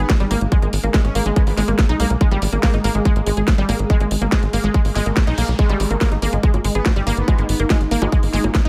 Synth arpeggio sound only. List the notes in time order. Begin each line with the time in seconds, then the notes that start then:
0.20 G3
0.31 A#3
0.52 G#3
0.62 G#3
0.84 A#3
0.94 G#3
1.15 A#3
1.26 G#3
1.36 G#3
1.57 G#3
1.68 A#3
1.89 D#4
2.00 A#3
2.21 G#3
2.31 G3
2.53 A#3
2.63 A#3
2.74 D#4
2.84 A#3
2.95 G#3
3.05 G#3
3.27 G#3
3.37 G#4
3.58 G3
3.69 A#3
3.90 G#3
4.00 G#3
4.22 A#3
4.32 G#3
4.53 A#3
4.64 G#3
4.74 G#3
4.96 G#3
5.06 A#3
5.27 D#4
5.38 A#3
5.59 G#3
5.69 G3
5.91 A#3
6.01 A#3
6.12 D#4
6.22 A#3
6.33 G#3
6.43 G#3
6.64 G#3
6.75 G#4
6.96 G3
7.07 A#3
7.28 G#3
7.38 G#3
7.60 A#3
7.70 G#3
7.91 A#3
8.02 G#3
8.12 G#3
8.34 G#3
8.44 A#3
8.65 D#4